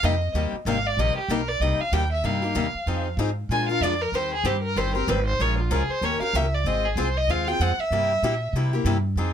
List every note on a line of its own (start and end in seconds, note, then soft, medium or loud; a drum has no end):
0.03 0.33 F2 medium
0.03 0.14 C3 medium
0.03 0.14 G3 medium
0.03 0.14 A#3 medium
0.03 0.14 D#4 medium
0.03 0.14 G4 loud
0.03 0.36 D#5 medium
0.34 0.51 D#2 medium
0.34 0.54 C3 medium
0.34 0.54 G3 medium
0.34 0.54 A#3 medium
0.34 0.55 D#4 medium
0.34 0.55 G4 medium
0.52 muted upright bass stroke soft
0.65 0.96 G#1 medium
0.65 0.77 C3 medium
0.65 0.77 G3 medium
0.65 0.77 A#3 medium
0.65 0.77 D#4 medium
0.65 0.78 G4 loud
0.65 0.88 F5 medium
0.87 1.01 D5 medium
0.97 1.15 A#1 medium
0.97 1.18 C3 medium
0.97 1.18 G3 medium
0.97 1.18 A#3 medium
0.97 1.18 D#4 medium
0.97 1.18 G4 medium
0.97 1.17 D#5 medium
1.16 1.33 G4 medium
1.16 muted upright bass stroke soft
1.28 1.59 B1 loud
1.28 1.40 C3 medium
1.28 1.40 G3 medium
1.28 1.40 A#3 medium
1.28 1.40 D#4 loud
1.28 1.41 G4 loud
1.28 1.50 A#4 medium
1.48 1.63 D5 medium
1.60 1.78 C2 medium
1.60 1.81 C3 medium
1.60 1.81 G3 medium
1.60 1.81 A#3 medium
1.60 1.81 D#4 medium
1.60 1.81 G4 medium
1.60 1.82 D#5 medium
1.79 1.95 F5 medium
1.79 muted upright bass stroke soft
1.92 2.23 D#2 loud
1.92 2.03 C3 medium
1.92 2.03 G3 medium
1.92 2.03 A#3 medium
1.92 2.03 D#4 loud
1.92 2.03 G4 medium
1.92 2.11 G5 medium
2.12 2.26 E5 medium
2.24 2.54 G2 medium
2.24 2.42 C3 medium
2.24 2.42 G3 medium
2.24 2.42 A#3 medium
2.24 2.42 D#4 medium
2.24 2.41 G4 medium
2.24 3.19 F5 medium
2.42 2.54 A#3 soft
2.42 2.55 D#4 soft
2.42 2.55 G4 medium
2.55 2.73 D#2 medium
2.55 2.66 C3 medium
2.55 2.66 G3 medium
2.55 2.66 A#3 loud
2.55 2.66 D#4 medium
2.55 2.66 G4 medium
2.75 muted upright bass stroke soft
2.86 3.16 F2 medium
2.86 3.07 F3 medium
2.86 3.07 C4 medium
2.86 3.07 D#4 medium
2.86 3.07 G#4 medium
3.17 3.48 G#2 medium
3.17 3.29 F3 medium
3.17 3.29 C4 medium
3.17 3.29 D#4 medium
3.17 3.30 G#4 medium
3.49 3.80 A#2 medium
3.49 3.68 F3 medium
3.49 3.69 G#3 medium
3.49 3.69 D4 medium
3.49 3.69 F4 medium
3.49 3.68 A#4 medium
3.49 3.68 G#5 medium
3.69 3.82 D4 soft
3.69 3.82 F4 medium
3.69 3.82 A#4 medium
3.69 3.85 F5 loud
3.80 4.11 F2 medium
3.80 3.93 F3 medium
3.80 3.93 G#3 medium
3.80 3.93 D4 medium
3.80 3.93 F4 medium
3.80 3.94 A#4 loud
3.80 4.03 D5 medium
4.02 4.17 A#4 medium
4.12 4.43 D#2 medium
4.12 4.33 D#3 medium
4.12 4.33 G3 medium
4.12 4.34 C4 medium
4.12 4.34 G4 medium
4.12 4.34 C5 medium
4.12 4.33 C5 medium
4.34 4.47 G#4 medium
4.44 4.75 G2 medium
4.44 4.55 D#3 medium
4.44 4.55 G3 medium
4.44 4.56 C4 loud
4.44 4.56 G4 medium
4.44 4.62 G4 medium
4.44 4.56 C5 medium
4.63 4.79 A#4 medium
4.76 5.07 G1 medium
4.76 4.94 D#3 medium
4.76 4.95 G3 medium
4.76 4.95 C4 medium
4.76 4.95 G4 medium
4.76 4.95 C5 medium
4.76 4.94 C5 medium
4.95 5.07 C4 soft
4.95 5.07 G4 medium
4.95 5.11 A#4 medium
4.95 5.07 C5 medium
5.07 5.38 G#1 loud
5.07 5.18 D#3 medium
5.07 5.19 G3 medium
5.07 5.19 C4 medium
5.07 5.19 G4 loud
5.07 5.27 B4 medium
5.07 5.19 C5 loud
5.27 5.42 C5 medium
5.39 5.70 A#1 medium
5.39 5.59 F3 medium
5.39 5.59 G#3 medium
5.39 5.60 C#4 medium
5.39 5.60 F4 medium
5.39 5.60 A#4 medium
5.39 5.58 C#5 medium
5.59 5.74 F4 soft
5.70 5.88 C#2 medium
5.70 5.81 F3 medium
5.70 5.82 G#3 medium
5.70 5.81 C#4 loud
5.70 5.82 F4 loud
5.70 5.92 G#4 medium
5.70 5.82 A#4 loud
5.88 6.06 C5 medium
5.88 muted upright bass stroke soft
6.01 6.19 D#2 medium
6.01 6.20 D#3 medium
6.01 6.20 A#3 medium
6.01 6.20 C#4 medium
6.01 6.21 G4 medium
6.01 6.19 A#4 medium
6.01 6.22 C#5 medium
6.20 6.34 C#4 soft
6.20 6.34 G4 soft
6.20 6.33 A#4 medium
6.20 6.37 F5 loud
6.20 muted upright bass stroke soft
6.33 6.64 C#2 medium
6.33 6.45 D#3 medium
6.33 6.45 A#3 medium
6.33 6.45 C#4 loud
6.33 6.45 G4 loud
6.33 6.45 A#4 loud
6.33 6.56 E5 medium
6.54 6.68 D5 medium
6.64 6.95 G#1 medium
6.64 6.85 G#3 medium
6.64 6.85 C4 medium
6.64 6.86 F4 medium
6.64 6.86 G#4 medium
6.64 6.86 D#5 medium
6.85 7.00 G#4 medium
6.96 7.27 C2 medium
6.96 7.07 G#3 medium
6.96 7.08 C4 medium
6.96 7.08 F4 medium
6.96 7.08 G#4 loud
6.96 7.18 C5 medium
7.17 7.32 D#5 medium
7.28 7.59 D#2 medium
7.28 7.47 G#3 medium
7.28 7.47 C4 medium
7.28 7.47 F4 medium
7.28 7.46 G#4 medium
7.28 7.49 F5 medium
7.47 7.60 C4 medium
7.47 7.60 F4 medium
7.47 7.60 G#4 medium
7.47 7.63 G5 medium
7.60 7.77 F2 medium
7.60 7.71 G#3 medium
7.60 7.71 C4 loud
7.60 7.71 F4 medium
7.60 7.71 G#4 medium
7.60 7.81 F#5 medium
7.78 8.55 E5 loud
7.78 muted upright bass stroke soft
7.91 8.22 G2 medium
7.91 8.11 C3 medium
7.91 8.11 G3 medium
7.91 8.12 A#3 medium
7.91 8.12 E4 medium
7.91 8.12 G4 medium
8.23 8.52 A#2 medium
8.23 8.34 C3 medium
8.23 8.34 G3 loud
8.23 8.34 A#3 medium
8.23 8.34 E4 medium
8.23 8.34 G4 medium
8.53 8.84 C3 medium
8.53 8.73 C3 medium
8.53 8.73 G3 medium
8.53 8.73 A#3 medium
8.53 8.73 E4 medium
8.53 8.72 G4 medium
8.73 8.85 A#3 medium
8.73 8.85 E4 medium
8.73 8.85 G4 medium
8.85 9.15 G2 loud
8.85 8.96 C3 loud
8.85 8.96 G3 loud
8.85 8.96 A#3 loud
8.85 8.97 E4 loud
8.85 8.97 G4 medium
9.16 9.33 F2 medium
9.16 9.33 F3 medium
9.16 9.33 C4 medium
9.16 9.33 D#4 medium
9.16 9.33 G#4 medium